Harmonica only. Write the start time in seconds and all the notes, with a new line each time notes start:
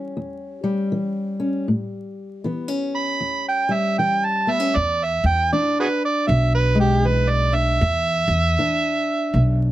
2.96 B5
3.49 G5
3.73 E5
3.99 G5
4.25 A5
4.51 E5
4.76 D5
5.04 E5
5.26 G5
5.53 D5
5.80 F#4 G#4 B4
6.05 D5
6.27 E5
6.55 B4
6.80 G4
7.06 B4
7.29 D5
7.54 E5